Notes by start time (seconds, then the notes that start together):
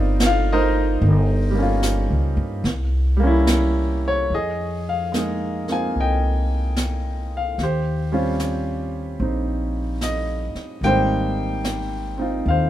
Already playing: G1 G3 A#3 C4 D#4 F4 A#4 C5 D5 D#5
0.20 snare, hi-hat pedal
0.26 F4 F5
0.53 D#4 A#4 C5 D#5
1.01 G1, brush sweep
1.51 G3 A#3
1.59 C#4 F4
1.83 snare, hi-hat pedal
2.10 C#2
2.37 G2
2.64 C2, brush sweep, snare
3.17 G3 A#3
3.23 C#4 E4
3.47 snare, hi-hat pedal
4.08 C#5
4.30 F2, brush sweep
4.34 G#4 D#5
4.89 F5
5.12 G#3 A#3 D#4, snare, hi-hat pedal
5.17 G#4
5.68 A#3 C4 F4, snare
5.72 G#5
5.95 C2, brush sweep
6.00 D#5 G5
6.76 snare, hi-hat pedal
7.37 F5
7.58 D#2, brush sweep, snare
7.63 G4 C5
8.12 G3 C4 C#4 F4
8.39 snare, hi-hat pedal
9.20 A#1 C4 D#4, brush sweep
10.01 D#5, snare, hi-hat pedal
10.55 muted upright bass stroke, snare
10.81 G#1 G3 A#3 C4 G5, brush sweep, snare
10.86 D#4 C5
11.64 snare, hi-hat pedal
12.18 C4 D#4 F4
12.46 D#2 F5, brush sweep
12.50 C5